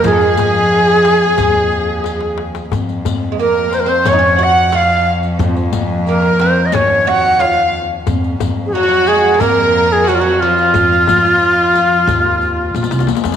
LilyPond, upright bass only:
\new Staff \with { instrumentName = "Upright bass" } { \clef bass \time 4/4 \tempo 4 = 90 f,8 f4. ees,2 | f,8 f,8 r4 f,2 | f,8 f4. ees,2 | f,8 f,8 r4 f,2 |
f,8 f4. ees,4 bes,,16 c,16 ees,16 f,16 | }